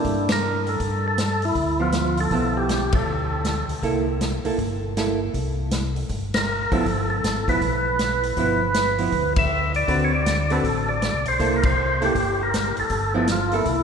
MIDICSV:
0, 0, Header, 1, 5, 480
1, 0, Start_track
1, 0, Tempo, 378310
1, 1009, Time_signature, 4, 2, 24, 8
1, 17548, End_track
2, 0, Start_track
2, 0, Title_t, "Tonewheel organ"
2, 0, Program_c, 0, 16
2, 0, Note_on_c, 0, 62, 83
2, 400, Note_off_c, 0, 62, 0
2, 411, Note_on_c, 0, 70, 93
2, 876, Note_on_c, 0, 69, 80
2, 877, Note_off_c, 0, 70, 0
2, 1349, Note_off_c, 0, 69, 0
2, 1366, Note_on_c, 0, 69, 92
2, 1834, Note_off_c, 0, 69, 0
2, 1840, Note_on_c, 0, 64, 93
2, 2310, Note_on_c, 0, 65, 76
2, 2311, Note_off_c, 0, 64, 0
2, 2786, Note_off_c, 0, 65, 0
2, 2798, Note_on_c, 0, 69, 90
2, 3262, Note_on_c, 0, 67, 86
2, 3270, Note_off_c, 0, 69, 0
2, 3742, Note_off_c, 0, 67, 0
2, 3746, Note_on_c, 0, 69, 67
2, 4639, Note_off_c, 0, 69, 0
2, 8049, Note_on_c, 0, 70, 77
2, 8531, Note_on_c, 0, 69, 89
2, 8536, Note_off_c, 0, 70, 0
2, 8994, Note_off_c, 0, 69, 0
2, 9009, Note_on_c, 0, 69, 79
2, 9497, Note_off_c, 0, 69, 0
2, 9506, Note_on_c, 0, 71, 94
2, 11842, Note_off_c, 0, 71, 0
2, 11906, Note_on_c, 0, 76, 97
2, 12339, Note_off_c, 0, 76, 0
2, 12385, Note_on_c, 0, 74, 86
2, 12743, Note_on_c, 0, 73, 70
2, 12748, Note_off_c, 0, 74, 0
2, 12848, Note_off_c, 0, 73, 0
2, 12874, Note_on_c, 0, 74, 85
2, 13349, Note_on_c, 0, 69, 87
2, 13350, Note_off_c, 0, 74, 0
2, 13811, Note_on_c, 0, 74, 82
2, 13828, Note_off_c, 0, 69, 0
2, 14299, Note_off_c, 0, 74, 0
2, 14314, Note_on_c, 0, 72, 89
2, 14672, Note_on_c, 0, 70, 59
2, 14673, Note_off_c, 0, 72, 0
2, 14772, Note_off_c, 0, 70, 0
2, 14787, Note_on_c, 0, 72, 94
2, 15266, Note_off_c, 0, 72, 0
2, 15284, Note_on_c, 0, 67, 94
2, 15755, Note_off_c, 0, 67, 0
2, 15768, Note_on_c, 0, 70, 72
2, 16191, Note_off_c, 0, 70, 0
2, 16237, Note_on_c, 0, 69, 86
2, 16697, Note_off_c, 0, 69, 0
2, 16712, Note_on_c, 0, 69, 80
2, 16857, Note_off_c, 0, 69, 0
2, 16899, Note_on_c, 0, 65, 81
2, 17189, Note_off_c, 0, 65, 0
2, 17198, Note_on_c, 0, 64, 94
2, 17548, Note_off_c, 0, 64, 0
2, 17548, End_track
3, 0, Start_track
3, 0, Title_t, "Hollow-body jazz guitar"
3, 0, Program_c, 1, 26
3, 0, Note_on_c, 1, 58, 53
3, 0, Note_on_c, 1, 64, 52
3, 0, Note_on_c, 1, 69, 54
3, 299, Note_off_c, 1, 58, 0
3, 303, Note_off_c, 1, 64, 0
3, 305, Note_off_c, 1, 69, 0
3, 2278, Note_on_c, 1, 59, 56
3, 2284, Note_on_c, 1, 53, 61
3, 2894, Note_off_c, 1, 59, 0
3, 2898, Note_off_c, 1, 53, 0
3, 2943, Note_on_c, 1, 53, 46
3, 2951, Note_on_c, 1, 59, 50
3, 2955, Note_on_c, 1, 64, 50
3, 3660, Note_off_c, 1, 53, 0
3, 3664, Note_off_c, 1, 59, 0
3, 3666, Note_off_c, 1, 64, 0
3, 4857, Note_on_c, 1, 58, 51
3, 4869, Note_on_c, 1, 64, 57
3, 4872, Note_on_c, 1, 69, 55
3, 5128, Note_off_c, 1, 58, 0
3, 5134, Note_off_c, 1, 64, 0
3, 5136, Note_off_c, 1, 69, 0
3, 5641, Note_on_c, 1, 58, 46
3, 5647, Note_on_c, 1, 64, 47
3, 5659, Note_on_c, 1, 69, 58
3, 5793, Note_off_c, 1, 58, 0
3, 5796, Note_off_c, 1, 64, 0
3, 5802, Note_off_c, 1, 69, 0
3, 6306, Note_on_c, 1, 58, 47
3, 6309, Note_on_c, 1, 64, 53
3, 6319, Note_on_c, 1, 69, 50
3, 6572, Note_off_c, 1, 58, 0
3, 6574, Note_off_c, 1, 64, 0
3, 6579, Note_off_c, 1, 69, 0
3, 8523, Note_on_c, 1, 53, 64
3, 8532, Note_on_c, 1, 59, 64
3, 8542, Note_on_c, 1, 64, 69
3, 8675, Note_off_c, 1, 53, 0
3, 8679, Note_off_c, 1, 59, 0
3, 8684, Note_off_c, 1, 64, 0
3, 9496, Note_on_c, 1, 53, 44
3, 9500, Note_on_c, 1, 59, 46
3, 9510, Note_on_c, 1, 64, 58
3, 9642, Note_off_c, 1, 53, 0
3, 9644, Note_off_c, 1, 59, 0
3, 9649, Note_off_c, 1, 64, 0
3, 10619, Note_on_c, 1, 53, 51
3, 10633, Note_on_c, 1, 59, 55
3, 10641, Note_on_c, 1, 64, 57
3, 10891, Note_off_c, 1, 53, 0
3, 10898, Note_off_c, 1, 59, 0
3, 10902, Note_off_c, 1, 64, 0
3, 11402, Note_on_c, 1, 53, 45
3, 11404, Note_on_c, 1, 59, 48
3, 11412, Note_on_c, 1, 64, 47
3, 11555, Note_off_c, 1, 53, 0
3, 11557, Note_off_c, 1, 59, 0
3, 11561, Note_off_c, 1, 64, 0
3, 12531, Note_on_c, 1, 50, 45
3, 12538, Note_on_c, 1, 66, 52
3, 12540, Note_on_c, 1, 60, 48
3, 12549, Note_on_c, 1, 71, 55
3, 12807, Note_off_c, 1, 50, 0
3, 12811, Note_off_c, 1, 66, 0
3, 12812, Note_off_c, 1, 60, 0
3, 12816, Note_off_c, 1, 71, 0
3, 13328, Note_on_c, 1, 50, 54
3, 13336, Note_on_c, 1, 66, 59
3, 13337, Note_on_c, 1, 60, 59
3, 13343, Note_on_c, 1, 71, 61
3, 13479, Note_off_c, 1, 50, 0
3, 13483, Note_off_c, 1, 66, 0
3, 13484, Note_off_c, 1, 60, 0
3, 13487, Note_off_c, 1, 71, 0
3, 14458, Note_on_c, 1, 58, 54
3, 14461, Note_on_c, 1, 64, 53
3, 14475, Note_on_c, 1, 69, 57
3, 14731, Note_off_c, 1, 58, 0
3, 14732, Note_off_c, 1, 64, 0
3, 14739, Note_off_c, 1, 69, 0
3, 15238, Note_on_c, 1, 58, 47
3, 15249, Note_on_c, 1, 69, 60
3, 15250, Note_on_c, 1, 64, 55
3, 15394, Note_off_c, 1, 58, 0
3, 15399, Note_off_c, 1, 69, 0
3, 15400, Note_off_c, 1, 64, 0
3, 16676, Note_on_c, 1, 53, 62
3, 16684, Note_on_c, 1, 59, 63
3, 16689, Note_on_c, 1, 64, 67
3, 16832, Note_off_c, 1, 53, 0
3, 16836, Note_off_c, 1, 59, 0
3, 16839, Note_off_c, 1, 64, 0
3, 17161, Note_on_c, 1, 58, 51
3, 17175, Note_on_c, 1, 64, 56
3, 17176, Note_on_c, 1, 69, 59
3, 17314, Note_off_c, 1, 58, 0
3, 17322, Note_off_c, 1, 64, 0
3, 17322, Note_off_c, 1, 69, 0
3, 17548, End_track
4, 0, Start_track
4, 0, Title_t, "Tonewheel organ"
4, 0, Program_c, 2, 16
4, 64, Note_on_c, 2, 43, 60
4, 968, Note_off_c, 2, 43, 0
4, 1018, Note_on_c, 2, 43, 76
4, 1925, Note_off_c, 2, 43, 0
4, 1975, Note_on_c, 2, 38, 65
4, 2883, Note_off_c, 2, 38, 0
4, 2929, Note_on_c, 2, 35, 73
4, 3840, Note_off_c, 2, 35, 0
4, 3883, Note_on_c, 2, 38, 57
4, 4621, Note_off_c, 2, 38, 0
4, 4672, Note_on_c, 2, 38, 34
4, 4759, Note_off_c, 2, 38, 0
4, 4851, Note_on_c, 2, 36, 75
4, 5585, Note_off_c, 2, 36, 0
4, 5646, Note_on_c, 2, 36, 33
4, 5730, Note_off_c, 2, 36, 0
4, 5815, Note_on_c, 2, 31, 62
4, 6724, Note_off_c, 2, 31, 0
4, 6772, Note_on_c, 2, 36, 81
4, 7682, Note_off_c, 2, 36, 0
4, 7732, Note_on_c, 2, 31, 58
4, 8466, Note_off_c, 2, 31, 0
4, 8528, Note_on_c, 2, 31, 37
4, 8611, Note_off_c, 2, 31, 0
4, 8702, Note_on_c, 2, 31, 86
4, 9142, Note_off_c, 2, 31, 0
4, 9183, Note_on_c, 2, 32, 75
4, 9623, Note_off_c, 2, 32, 0
4, 9652, Note_on_c, 2, 35, 59
4, 10564, Note_off_c, 2, 35, 0
4, 10614, Note_on_c, 2, 31, 77
4, 11525, Note_off_c, 2, 31, 0
4, 11574, Note_on_c, 2, 38, 62
4, 12485, Note_off_c, 2, 38, 0
4, 12538, Note_on_c, 2, 38, 77
4, 13447, Note_off_c, 2, 38, 0
4, 13496, Note_on_c, 2, 33, 56
4, 14089, Note_off_c, 2, 33, 0
4, 14127, Note_on_c, 2, 36, 58
4, 14278, Note_off_c, 2, 36, 0
4, 14284, Note_on_c, 2, 35, 62
4, 14436, Note_off_c, 2, 35, 0
4, 14459, Note_on_c, 2, 36, 80
4, 15367, Note_off_c, 2, 36, 0
4, 15414, Note_on_c, 2, 31, 58
4, 16148, Note_off_c, 2, 31, 0
4, 16199, Note_on_c, 2, 31, 34
4, 16285, Note_off_c, 2, 31, 0
4, 16363, Note_on_c, 2, 31, 82
4, 17278, Note_off_c, 2, 31, 0
4, 17324, Note_on_c, 2, 36, 65
4, 17548, Note_off_c, 2, 36, 0
4, 17548, End_track
5, 0, Start_track
5, 0, Title_t, "Drums"
5, 57, Note_on_c, 9, 46, 38
5, 60, Note_on_c, 9, 36, 26
5, 184, Note_off_c, 9, 46, 0
5, 187, Note_off_c, 9, 36, 0
5, 364, Note_on_c, 9, 51, 61
5, 368, Note_on_c, 9, 38, 76
5, 491, Note_off_c, 9, 51, 0
5, 495, Note_off_c, 9, 38, 0
5, 844, Note_on_c, 9, 46, 32
5, 971, Note_off_c, 9, 46, 0
5, 1013, Note_on_c, 9, 46, 42
5, 1015, Note_on_c, 9, 36, 28
5, 1140, Note_off_c, 9, 46, 0
5, 1142, Note_off_c, 9, 36, 0
5, 1495, Note_on_c, 9, 42, 52
5, 1499, Note_on_c, 9, 38, 61
5, 1622, Note_off_c, 9, 42, 0
5, 1626, Note_off_c, 9, 38, 0
5, 1800, Note_on_c, 9, 46, 33
5, 1927, Note_off_c, 9, 46, 0
5, 1968, Note_on_c, 9, 46, 35
5, 1971, Note_on_c, 9, 36, 29
5, 2095, Note_off_c, 9, 46, 0
5, 2098, Note_off_c, 9, 36, 0
5, 2440, Note_on_c, 9, 42, 44
5, 2444, Note_on_c, 9, 38, 56
5, 2567, Note_off_c, 9, 42, 0
5, 2571, Note_off_c, 9, 38, 0
5, 2757, Note_on_c, 9, 46, 38
5, 2883, Note_off_c, 9, 46, 0
5, 2929, Note_on_c, 9, 46, 36
5, 2932, Note_on_c, 9, 36, 29
5, 3056, Note_off_c, 9, 46, 0
5, 3059, Note_off_c, 9, 36, 0
5, 3414, Note_on_c, 9, 42, 52
5, 3418, Note_on_c, 9, 38, 64
5, 3541, Note_off_c, 9, 42, 0
5, 3545, Note_off_c, 9, 38, 0
5, 3710, Note_on_c, 9, 51, 65
5, 3719, Note_on_c, 9, 36, 74
5, 3837, Note_off_c, 9, 51, 0
5, 3846, Note_off_c, 9, 36, 0
5, 4372, Note_on_c, 9, 42, 43
5, 4376, Note_on_c, 9, 38, 54
5, 4499, Note_off_c, 9, 42, 0
5, 4503, Note_off_c, 9, 38, 0
5, 4683, Note_on_c, 9, 46, 37
5, 4810, Note_off_c, 9, 46, 0
5, 4857, Note_on_c, 9, 36, 29
5, 4860, Note_on_c, 9, 46, 35
5, 4983, Note_off_c, 9, 36, 0
5, 4987, Note_off_c, 9, 46, 0
5, 5339, Note_on_c, 9, 42, 49
5, 5343, Note_on_c, 9, 38, 60
5, 5466, Note_off_c, 9, 42, 0
5, 5470, Note_off_c, 9, 38, 0
5, 5643, Note_on_c, 9, 46, 33
5, 5770, Note_off_c, 9, 46, 0
5, 5817, Note_on_c, 9, 36, 27
5, 5819, Note_on_c, 9, 46, 34
5, 5944, Note_off_c, 9, 36, 0
5, 5946, Note_off_c, 9, 46, 0
5, 6303, Note_on_c, 9, 42, 45
5, 6307, Note_on_c, 9, 38, 56
5, 6430, Note_off_c, 9, 42, 0
5, 6434, Note_off_c, 9, 38, 0
5, 6777, Note_on_c, 9, 46, 38
5, 6779, Note_on_c, 9, 36, 27
5, 6904, Note_off_c, 9, 46, 0
5, 6906, Note_off_c, 9, 36, 0
5, 7248, Note_on_c, 9, 42, 53
5, 7252, Note_on_c, 9, 38, 66
5, 7375, Note_off_c, 9, 42, 0
5, 7379, Note_off_c, 9, 38, 0
5, 7563, Note_on_c, 9, 46, 33
5, 7690, Note_off_c, 9, 46, 0
5, 7730, Note_on_c, 9, 46, 38
5, 7736, Note_on_c, 9, 36, 27
5, 7857, Note_off_c, 9, 46, 0
5, 7863, Note_off_c, 9, 36, 0
5, 8043, Note_on_c, 9, 51, 62
5, 8047, Note_on_c, 9, 38, 72
5, 8170, Note_off_c, 9, 51, 0
5, 8174, Note_off_c, 9, 38, 0
5, 8520, Note_on_c, 9, 46, 34
5, 8524, Note_on_c, 9, 36, 48
5, 8647, Note_off_c, 9, 46, 0
5, 8651, Note_off_c, 9, 36, 0
5, 8701, Note_on_c, 9, 36, 26
5, 8704, Note_on_c, 9, 46, 36
5, 8828, Note_off_c, 9, 36, 0
5, 8830, Note_off_c, 9, 46, 0
5, 9187, Note_on_c, 9, 42, 53
5, 9191, Note_on_c, 9, 38, 62
5, 9314, Note_off_c, 9, 42, 0
5, 9318, Note_off_c, 9, 38, 0
5, 9490, Note_on_c, 9, 36, 44
5, 9497, Note_on_c, 9, 46, 34
5, 9617, Note_off_c, 9, 36, 0
5, 9624, Note_off_c, 9, 46, 0
5, 9661, Note_on_c, 9, 36, 29
5, 9662, Note_on_c, 9, 46, 41
5, 9788, Note_off_c, 9, 36, 0
5, 9789, Note_off_c, 9, 46, 0
5, 10138, Note_on_c, 9, 42, 45
5, 10142, Note_on_c, 9, 38, 60
5, 10265, Note_off_c, 9, 42, 0
5, 10269, Note_off_c, 9, 38, 0
5, 10448, Note_on_c, 9, 46, 37
5, 10574, Note_off_c, 9, 46, 0
5, 10616, Note_on_c, 9, 46, 35
5, 10620, Note_on_c, 9, 36, 29
5, 10742, Note_off_c, 9, 46, 0
5, 10747, Note_off_c, 9, 36, 0
5, 11093, Note_on_c, 9, 42, 48
5, 11097, Note_on_c, 9, 38, 64
5, 11220, Note_off_c, 9, 42, 0
5, 11224, Note_off_c, 9, 38, 0
5, 11399, Note_on_c, 9, 46, 34
5, 11525, Note_off_c, 9, 46, 0
5, 11573, Note_on_c, 9, 46, 34
5, 11578, Note_on_c, 9, 36, 30
5, 11700, Note_off_c, 9, 46, 0
5, 11704, Note_off_c, 9, 36, 0
5, 11878, Note_on_c, 9, 51, 67
5, 11884, Note_on_c, 9, 36, 73
5, 12005, Note_off_c, 9, 51, 0
5, 12011, Note_off_c, 9, 36, 0
5, 12361, Note_on_c, 9, 46, 34
5, 12488, Note_off_c, 9, 46, 0
5, 12537, Note_on_c, 9, 36, 30
5, 12538, Note_on_c, 9, 46, 40
5, 12664, Note_off_c, 9, 36, 0
5, 12665, Note_off_c, 9, 46, 0
5, 13020, Note_on_c, 9, 42, 53
5, 13024, Note_on_c, 9, 38, 65
5, 13147, Note_off_c, 9, 42, 0
5, 13151, Note_off_c, 9, 38, 0
5, 13323, Note_on_c, 9, 46, 35
5, 13449, Note_off_c, 9, 46, 0
5, 13498, Note_on_c, 9, 36, 28
5, 13506, Note_on_c, 9, 46, 38
5, 13625, Note_off_c, 9, 36, 0
5, 13633, Note_off_c, 9, 46, 0
5, 13982, Note_on_c, 9, 42, 46
5, 13986, Note_on_c, 9, 38, 55
5, 14109, Note_off_c, 9, 42, 0
5, 14112, Note_off_c, 9, 38, 0
5, 14279, Note_on_c, 9, 46, 37
5, 14406, Note_off_c, 9, 46, 0
5, 14459, Note_on_c, 9, 36, 29
5, 14462, Note_on_c, 9, 46, 42
5, 14586, Note_off_c, 9, 36, 0
5, 14589, Note_off_c, 9, 46, 0
5, 14760, Note_on_c, 9, 51, 65
5, 14765, Note_on_c, 9, 36, 75
5, 14887, Note_off_c, 9, 51, 0
5, 14892, Note_off_c, 9, 36, 0
5, 15247, Note_on_c, 9, 46, 33
5, 15374, Note_off_c, 9, 46, 0
5, 15419, Note_on_c, 9, 36, 30
5, 15421, Note_on_c, 9, 46, 38
5, 15546, Note_off_c, 9, 36, 0
5, 15548, Note_off_c, 9, 46, 0
5, 15906, Note_on_c, 9, 42, 50
5, 15910, Note_on_c, 9, 38, 60
5, 16033, Note_off_c, 9, 42, 0
5, 16037, Note_off_c, 9, 38, 0
5, 16198, Note_on_c, 9, 46, 37
5, 16325, Note_off_c, 9, 46, 0
5, 16362, Note_on_c, 9, 46, 41
5, 16370, Note_on_c, 9, 36, 29
5, 16489, Note_off_c, 9, 46, 0
5, 16497, Note_off_c, 9, 36, 0
5, 16843, Note_on_c, 9, 42, 54
5, 16847, Note_on_c, 9, 38, 62
5, 16970, Note_off_c, 9, 42, 0
5, 16974, Note_off_c, 9, 38, 0
5, 17147, Note_on_c, 9, 46, 33
5, 17273, Note_off_c, 9, 46, 0
5, 17324, Note_on_c, 9, 46, 42
5, 17329, Note_on_c, 9, 36, 26
5, 17451, Note_off_c, 9, 46, 0
5, 17456, Note_off_c, 9, 36, 0
5, 17548, End_track
0, 0, End_of_file